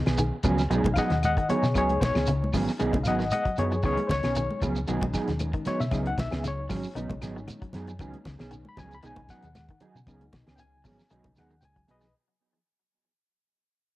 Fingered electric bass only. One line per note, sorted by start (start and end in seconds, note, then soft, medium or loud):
0.06 0.30 B1 medium
0.44 0.68 C#2 medium
0.70 0.83 B1 loud
0.84 0.95 B1 medium
1.10 1.34 D#2 medium
1.63 1.74 B2 medium
1.75 1.98 C#2 loud
2.01 2.14 B1 medium
2.15 2.49 C#2 medium
2.53 2.66 G#1 medium
2.81 2.92 B1 loud
2.93 3.04 B1 medium
3.06 3.29 G#1 medium
3.58 3.81 F#2 medium
3.84 3.96 C#2 medium
4.09 4.22 C#2 medium
4.24 4.47 B1 medium
4.62 4.85 C#2 medium
4.89 5.01 B1 loud
5.02 5.13 B1 medium
5.28 5.51 D#2 medium
5.80 5.91 B2 medium
5.92 6.16 C#2 loud
6.18 6.31 B1 medium
6.32 6.67 C#2 loud
6.70 6.83 G#1 medium
6.95 7.08 B1 loud
7.10 7.21 B1 loud
7.22 7.46 G#1 medium
7.75 7.98 F#2 loud
7.99 8.12 C#2 loud
8.25 8.38 C#2 medium
8.40 8.63 B1 medium
8.77 9.01 C#2 medium
9.04 9.16 B1 loud
9.17 9.28 B1 medium
9.43 9.67 D#2 medium
9.95 10.06 B2 medium
10.07 10.31 C#2 loud
10.33 10.46 B1 medium
10.48 10.82 C#2 medium
10.85 10.98 G#1 medium
11.11 11.24 B1 loud
11.25 11.36 B1 medium
11.37 11.60 D#2 medium
11.63 11.86 C#2 medium
11.89 12.12 B1 medium